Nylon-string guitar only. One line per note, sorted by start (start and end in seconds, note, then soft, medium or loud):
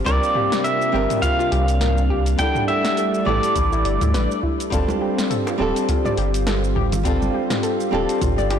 0.04 0.90 G3 medium
0.04 0.90 C4 medium
0.04 0.91 D4 medium
0.04 0.91 F4 medium
0.04 0.92 A#4 loud
0.92 1.64 G3 medium
0.92 1.64 C4 medium
0.92 1.64 D4 medium
0.92 1.65 F4 medium
0.92 1.65 A#4 loud
2.38 3.23 G3 medium
2.38 3.23 B3 medium
2.38 3.24 D4 medium
2.38 3.24 E4 medium
2.38 3.25 A4 loud
3.25 3.97 G3 medium
3.25 3.97 B3 medium
3.25 3.98 D4 medium
3.25 3.98 E4 medium
3.25 3.98 A4 loud
4.70 5.56 G3 medium
4.70 5.56 C4 medium
4.70 5.57 D4 medium
4.70 5.57 F4 medium
4.70 5.57 A4 loud
5.58 6.29 G3 medium
5.58 6.30 C4 medium
5.58 6.30 D4 medium
5.58 6.31 F4 medium
5.58 6.31 A4 loud
7.03 7.89 G3 medium
7.03 7.89 C4 medium
7.03 7.90 D4 medium
7.03 7.90 F4 medium
7.03 7.90 A4 medium
7.91 8.59 G3 medium
7.91 8.59 C4 medium
7.91 8.59 D4 medium
7.91 8.59 F4 medium
7.91 8.59 A4 loud